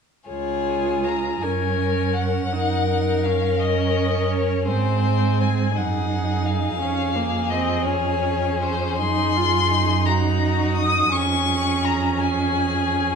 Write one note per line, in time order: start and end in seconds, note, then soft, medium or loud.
0.28 1.39 C#2 soft
0.28 1.45 F4 soft
0.28 1.44 G#4 soft
0.28 1.06 C#5 medium
1.04 1.43 A#5 soft
1.42 2.50 F#2 soft
1.42 2.54 C#4 soft
1.42 2.51 A#4 soft
1.42 2.15 G#5 soft
2.14 3.25 F#5 medium
2.51 4.69 F#2 soft
2.51 2.88 D#4 soft
2.51 4.63 A#4 soft
2.88 3.27 D#4 soft
3.23 4.68 C#4 soft
3.23 3.61 F5 medium
3.60 4.33 D#5 soft
4.31 4.68 C#5 soft
4.68 5.78 G#2 soft
4.68 5.75 C4 soft
4.68 5.74 G#4 soft
4.68 5.43 C5 medium
5.41 5.78 G#5 soft
5.76 6.81 F#2 soft
5.76 6.79 D#4 soft
5.76 6.79 G#4 soft
5.76 6.48 F#5 medium
6.46 7.52 F5 medium
6.80 9.02 F2 soft
6.80 7.17 C#4 medium
6.80 10.08 G#4 soft
7.15 7.53 A#3 soft
7.50 7.87 C4 soft
7.50 7.85 D#5 medium
7.84 8.99 C#4 soft
7.84 8.61 C#5 medium
8.60 8.98 C5 medium
8.98 11.13 F#2 soft
8.98 9.38 D#4 medium
8.98 10.07 C6 medium
9.36 9.72 F4 soft
9.71 11.12 D#4 soft
10.06 11.13 F#4 soft
10.06 10.76 A#5 medium
10.77 11.14 D#6 medium
11.12 13.15 F2 soft
11.12 13.15 C#4 medium
11.12 12.18 G#4 soft
11.12 11.87 C#6 medium
11.85 12.20 A#5 medium
12.18 13.15 G#4 soft
12.18 13.15 G#5 medium